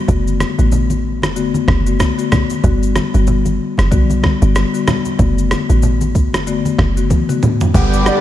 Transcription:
0.08 0.44 F#1 loud
0.08 0.54 D3 medium
0.08 0.54 A3 medium
0.08 0.54 B3 medium
0.08 0.55 F#4 loud
0.08 kick loud
0.08 low conga medium
0.08 shaker medium
0.27 shaker medium
0.40 cross-stick medium
0.40 high conga medium
0.40 shaker medium
0.58 1.24 A1 medium
0.58 0.81 D3 medium
0.58 0.81 A3 medium
0.58 0.81 B3 medium
0.58 0.81 F#4 medium
0.58 shaker medium
0.72 low conga medium
0.72 shaker medium
0.90 high conga medium
0.90 shaker medium
1.22 1.55 F#1 medium
1.22 cross-stick medium
1.22 high conga medium
1.22 shaker medium
1.36 1.61 D3 medium
1.36 1.61 A3 medium
1.36 1.61 B3 medium
1.36 1.61 F#4 loud
1.36 shaker medium
1.54 high conga medium
1.54 shaker soft
1.68 2.03 F#1 loud
1.68 kick medium
1.68 cross-stick medium
1.68 high conga medium
1.86 2.08 D3 medium
1.86 2.09 A3 medium
1.86 2.09 B3 medium
1.86 2.09 F#4 medium
1.86 shaker medium
2.00 kick medium
2.00 cross-stick loud
2.00 shaker medium
2.18 2.40 D3 medium
2.18 2.40 A3 medium
2.18 2.40 B3 medium
2.18 2.41 F#4 medium
2.18 shaker medium
2.32 kick loud
2.32 cross-stick loud
2.32 high conga medium
2.32 low conga medium
2.32 shaker medium
2.50 high conga medium
2.50 shaker medium
2.63 2.99 G1 loud
2.63 3.10 D3 medium
2.63 3.10 G3 medium
2.63 3.10 B3 medium
2.63 3.10 F#4 loud
2.63 kick loud
2.63 low conga medium
2.63 shaker medium
2.83 shaker medium
2.96 cross-stick medium
2.96 high conga medium
2.96 shaker medium
3.14 3.59 G1 medium
3.14 3.36 D3 medium
3.14 3.36 G3 medium
3.14 3.36 B3 medium
3.14 3.36 F#4 medium
3.14 shaker medium
3.27 low conga medium
3.27 shaker medium
3.45 high conga medium
3.45 shaker medium
3.77 3.93 F#1 medium
3.77 cross-stick medium
3.77 high conga medium
3.77 shaker medium
3.91 4.27 B1 loud
3.91 4.16 D3 medium
3.91 4.16 G3 medium
3.91 4.16 B3 medium
3.91 4.16 F#4 loud
3.91 kick loud
3.91 shaker medium
4.10 high conga medium
4.10 shaker soft
4.23 kick medium
4.23 cross-stick medium
4.23 high conga medium
4.41 4.64 G1 medium
4.41 4.64 D3 medium
4.41 4.64 G3 medium
4.41 4.64 B3 medium
4.41 4.64 F#4 medium
4.41 shaker medium
4.55 cross-stick loud
4.55 shaker medium
4.74 4.96 D3 medium
4.74 4.96 G3 medium
4.74 4.96 B3 medium
4.74 4.96 F#4 medium
4.74 shaker medium
4.87 cross-stick loud
4.87 high conga medium
4.87 low conga medium
4.87 shaker medium
5.05 high conga medium
5.05 shaker medium
5.19 5.55 F#1 loud
5.19 5.65 D3 medium
5.19 5.65 A3 medium
5.19 5.65 B3 medium
5.19 5.65 F#4 loud
5.19 kick loud
5.19 low conga medium
5.19 shaker medium
5.38 shaker medium
5.51 cross-stick medium
5.51 high conga medium
5.51 shaker medium
5.69 6.35 A1 medium
5.69 5.91 D3 medium
5.69 5.92 A3 medium
5.69 5.92 B3 medium
5.69 5.92 F#4 medium
5.69 shaker medium
5.82 low conga medium
5.82 shaker medium
6.01 high conga medium
6.01 shaker medium
6.15 kick medium
6.15 shaker medium
6.33 6.65 F#1 medium
6.33 cross-stick medium
6.33 high conga medium
6.33 shaker medium
6.47 6.71 D3 medium
6.47 6.72 A3 medium
6.47 6.72 B3 medium
6.47 6.72 F#4 loud
6.47 shaker medium
6.65 high conga medium
6.65 shaker soft
6.79 7.14 F#1 loud
6.79 kick medium
6.79 cross-stick medium
6.79 high conga medium
6.97 7.19 D3 medium
6.97 7.19 A3 medium
6.97 7.19 B3 medium
6.97 7.19 F#4 medium
6.97 shaker medium
7.10 kick medium
7.10 high tom medium
7.10 shaker medium
7.29 7.51 D3 medium
7.29 7.51 A3 medium
7.29 7.51 B3 medium
7.29 7.51 F#4 medium
7.29 mid tom medium
7.29 shaker medium
7.43 mid tom medium
7.43 high conga medium
7.43 low conga medium
7.43 shaker medium
7.61 floor tom medium
7.61 high conga medium
7.61 shaker medium
7.74 8.10 G1 loud
7.74 8.21 D3 medium
7.74 8.20 D3 medium
7.74 8.21 G3 medium
7.74 8.20 G3 medium
7.74 8.21 B3 medium
7.74 8.21 G4 loud
7.74 8.21 G4 medium
7.74 8.21 D5 medium
7.74 8.21 F#5 loud
7.74 8.21 F#5 medium
7.74 8.21 B5 medium
7.74 kick loud
7.74 downlifter medium
7.74 shaker medium
7.93 shaker medium
8.06 8.21 D5 medium
8.06 cross-stick medium
8.06 shaker medium

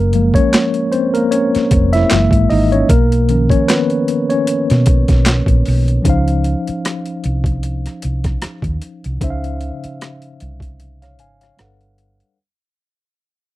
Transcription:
0.00 0.36 F#1 loud
0.00 0.14 A#3 medium
0.00 0.31 A#4 medium
0.13 2.07 F3 medium
0.13 2.07 G#3 medium
0.13 1.15 A#3 medium
0.13 closed hi-hat medium
0.34 0.89 C#4 medium
0.34 0.93 C#5 loud
0.34 kick medium
0.34 closed hi-hat soft
0.54 snare loud
0.54 clap loud
0.54 closed hi-hat medium
0.74 closed hi-hat soft
0.92 1.13 C4 medium
0.92 1.14 C5 medium
0.92 closed hi-hat medium
1.14 1.31 A#3 medium
1.14 1.32 A#4 medium
1.14 closed hi-hat medium
1.31 1.90 C#4 medium
1.31 1.94 C#5 medium
1.31 closed hi-hat medium
1.55 muted fingered electric bass stroke medium
1.55 snare soft
1.55 closed hi-hat medium
1.71 2.03 F1 medium
1.71 kick loud
1.71 closed hi-hat medium
1.93 2.47 E4 medium
1.93 2.51 E5 loud
1.93 snare soft
1.93 closed hi-hat medium
2.10 2.29 F#1 loud
2.10 2.65 E3 medium
2.10 2.65 G#3 medium
2.10 2.65 A#3 medium
2.10 snare loud
2.10 clap loud
2.10 closed hi-hat medium
2.31 2.46 G#1 medium
2.31 kick medium
2.31 closed hi-hat soft
2.50 2.82 G#1 medium
2.50 2.71 D#4 medium
2.50 2.72 D#5 medium
2.50 open hi-hat medium
2.72 2.89 C#4 medium
2.72 2.88 C#5 medium
2.72 closed hi-hat soft
2.89 3.52 B1 loud
2.89 3.48 A#3 medium
2.89 3.29 A#4 loud
2.89 kick loud
2.89 closed hi-hat medium
3.12 closed hi-hat medium
3.29 6.01 D#3 medium
3.29 6.01 F3 medium
3.29 3.51 C#4 medium
3.29 6.02 A#4 soft
3.29 closed hi-hat medium
3.50 3.68 C#4 medium
3.50 3.68 C#5 medium
3.50 kick medium
3.50 closed hi-hat soft
3.68 4.27 B3 medium
3.68 4.31 B4 medium
3.68 snare loud
3.68 clap loud
3.68 closed hi-hat loud
3.90 closed hi-hat soft
4.08 closed hi-hat medium
4.30 5.62 C#4 medium
4.30 5.61 C#5 medium
4.30 closed hi-hat soft
4.47 closed hi-hat medium
4.70 4.84 B2 loud
4.70 snare soft
4.70 closed hi-hat medium
4.86 5.05 B1 medium
4.86 kick loud
4.86 closed hi-hat medium
5.08 5.40 B1 medium
5.08 kick loud
5.08 snare soft
5.08 closed hi-hat medium
5.26 snare loud
5.26 clap loud
5.26 closed hi-hat medium
5.46 5.61 A#1 medium
5.46 kick medium
5.46 closed hi-hat soft
5.66 5.98 B1 medium
5.66 open hi-hat medium
5.88 closed hi-hat soft
6.02 6.54 C#2 medium
6.02 9.15 F3 medium
6.02 9.16 C#4 medium
6.02 9.17 D#4 medium
6.02 kick medium
6.02 closed hi-hat medium
6.08 9.18 C5 medium
6.08 9.19 F5 medium
6.28 closed hi-hat soft
6.44 closed hi-hat medium
6.67 muted fingered electric bass stroke soft
6.67 closed hi-hat soft
6.85 cross-stick loud
6.85 closed hi-hat medium
7.06 closed hi-hat soft
7.24 7.86 C2 medium
7.24 closed hi-hat medium
7.44 kick medium
7.44 closed hi-hat soft
7.63 closed hi-hat medium
7.86 cross-stick soft
7.86 closed hi-hat soft
8.02 8.35 C2 medium
8.02 closed hi-hat medium
8.24 kick medium
8.24 cross-stick soft
8.24 closed hi-hat soft
8.42 muted fingered electric bass stroke soft
8.42 cross-stick loud
8.42 closed hi-hat medium
8.62 8.77 D#2 medium
8.62 kick medium
8.62 closed hi-hat soft
8.82 closed hi-hat medium
9.04 9.18 C2 medium
9.04 closed hi-hat soft
9.20 9.70 C#2 medium
9.20 10.39 C#3 medium
9.20 10.39 C#4 medium
9.20 10.40 D#4 medium
9.20 10.40 C5 medium
9.20 9.30 E5 medium
9.20 kick loud
9.20 closed hi-hat medium
9.30 10.44 F5 medium
9.44 closed hi-hat soft
9.61 closed hi-hat medium
9.84 muted fingered electric bass stroke soft
9.84 closed hi-hat soft
10.01 cross-stick loud
10.01 closed hi-hat medium
10.22 closed hi-hat soft
10.40 11.21 C2 medium
10.40 closed hi-hat medium
10.60 kick medium
10.60 closed hi-hat soft
10.80 closed hi-hat medium
11.02 11.18 C#5 soft
11.02 11.18 F5 medium
11.02 cross-stick soft
11.02 closed hi-hat soft
11.19 11.51 G#1 medium
11.19 11.40 F5 soft
11.19 11.40 G#5 medium
11.19 closed hi-hat medium
11.41 11.79 C#5 soft
11.41 11.78 F5 medium
11.41 cross-stick soft
11.41 closed hi-hat soft
11.57 12.21 G1 medium
11.57 12.36 G3 medium
11.57 12.37 D4 soft
11.57 12.37 A4 medium
11.57 12.38 B4 medium
11.57 12.38 F#5 medium
11.57 cross-stick medium
11.57 closed hi-hat medium
11.81 closed hi-hat soft
11.98 closed hi-hat medium
12.20 closed hi-hat soft

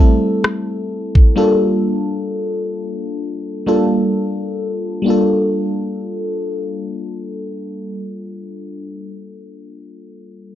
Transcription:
0.00 0.97 G3 medium
0.00 0.97 A3 medium
0.00 0.98 C4 medium
0.00 0.98 E4 medium
0.00 0.98 A4 medium
0.44 cross-stick loud
1.15 kick medium
1.36 2.69 G3 medium
1.36 2.69 A#3 medium
1.36 2.69 D4 medium
1.36 2.69 F4 medium
1.36 2.70 A4 loud
3.66 4.66 G3 medium
3.66 4.67 A#3 medium
3.66 4.67 D4 medium
3.66 4.67 F4 medium
3.66 4.67 A4 medium
5.02 9.50 G3 medium
5.02 9.53 A#3 medium
5.06 9.54 D4 medium
5.06 9.57 F4 medium
5.10 9.59 A4 medium

